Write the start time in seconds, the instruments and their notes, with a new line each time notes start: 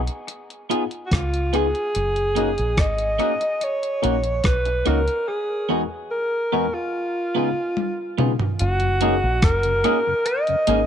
0.07 muted clean electric guitar stroke, closed hi-hat
0.28 closed hi-hat
0.50 closed hi-hat
0.70 clean electric guitar B3 F4 G#4, tine electric piano B3 D#4 F4 G#4, closed hi-hat
0.91 closed hi-hat
1.06 alto saxophone F#4
1.11 fingered electric bass C#2, alto saxophone F4, kick, cross-stick, closed hi-hat
1.34 closed hi-hat
1.53 clean electric guitar B3 F4 G#4, tine electric piano B3 D#4 F4 G#4, alto saxophone G#4, closed hi-hat
1.75 closed hi-hat
1.95 fingered electric bass F#1, closed hi-hat
2.16 closed hi-hat
2.35 clean electric guitar A#3 D#4 F#4, tine electric piano A#3 C#4 D#4 G#4, closed hi-hat
2.58 fingered electric bass A#1, closed hi-hat
2.77 fingered electric bass G#1, alto saxophone D#5, kick, cross-stick, closed hi-hat
2.98 closed hi-hat
3.19 clean electric guitar A#3 D#4 F#4, tine electric piano A#3 C#4 D#4 G#4, closed hi-hat
3.41 muted clean electric guitar stroke, closed hi-hat
3.61 alto saxophone C#5, closed hi-hat
3.83 closed hi-hat
4.02 fingered electric bass A#1, tine electric piano A#3 C#4 D#4 F#4, clean electric guitar A#3 D#4 F#4, closed hi-hat
4.24 closed hi-hat
4.44 fingered electric bass B1, alto saxophone B4, kick, cross-stick, closed hi-hat
4.65 muted clean electric guitar stroke, closed hi-hat
4.86 fingered electric bass C#2, clean electric guitar A#3 D#4 F#4, tine electric piano A#3 C#4 D#4 F#4, alto saxophone A#4, closed hi-hat
5.08 closed hi-hat
5.28 alto saxophone G#4
5.69 tine electric piano E2 G#3 B3 D#4 F#4, clean electric guitar B3 D#4 G#4
6.11 alto saxophone A#4
6.52 tine electric piano E2 G#3 B3 D#4 F#4, clean electric guitar B3 D#4 G#4
6.74 alto saxophone F4, muted clean electric guitar stroke
7.35 tine electric piano C#3 G#3 B3 D#4 F4, clean electric guitar B3 F4 G#4
7.77 high tom
8.18 tine electric piano C#3 G#3 B3 D#4 F4, clean electric guitar B3 F4 G#4, mid tom
8.39 floor tom
8.59 fingered electric bass F#1, alto saxophone F#4, closed hi-hat
8.80 tonewheel organ F#2 C#3, closed hi-hat
9.01 tonewheel organ G#3 A#3 D#4, clean electric guitar A#3 D#4 G#4, tine electric piano A#3 C#4 D#4 G#4, closed hi-hat
9.24 fingered electric bass A#1
9.42 fingered electric bass F#1, alto saxophone A#4, kick, cross-stick, closed hi-hat
9.63 tonewheel organ F#2 C#3, closed hi-hat
9.84 tonewheel organ G#3 A#3 D#4, clean electric guitar A#3 D#4 G#4, tine electric piano A#3 C#4 D#4 G#4, closed hi-hat
10.06 tonewheel organ F#2 C#3, muted clean electric guitar stroke
10.26 alto saxophone D#5, closed hi-hat
10.47 tonewheel organ F#2 C#3, closed hi-hat
10.67 fingered electric bass G#1, tonewheel organ G#3 A#3 D#4, tine electric piano A#3 C#4 D#4 G#4, clean electric guitar A#3 D#4 G#4, closed hi-hat